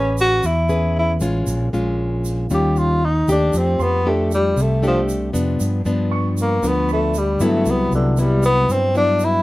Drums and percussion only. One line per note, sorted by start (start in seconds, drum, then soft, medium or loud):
0.18 shaker medium
0.43 shaker medium
0.69 shaker soft
1.20 shaker medium
1.47 shaker medium
1.74 shaker soft
2.25 shaker medium
2.50 shaker medium
2.76 shaker soft
3.28 shaker medium
3.53 shaker medium
3.80 shaker soft
4.31 shaker medium
4.57 shaker medium
4.83 shaker soft
5.09 shaker medium
5.35 shaker medium
5.60 shaker medium
5.86 shaker soft
6.37 shaker medium
6.63 shaker medium
6.89 shaker soft
7.14 shaker medium
7.40 shaker medium
7.66 shaker medium
7.92 shaker soft
8.17 shaker medium
8.43 shaker medium
8.69 shaker medium
8.95 shaker soft
9.20 shaker medium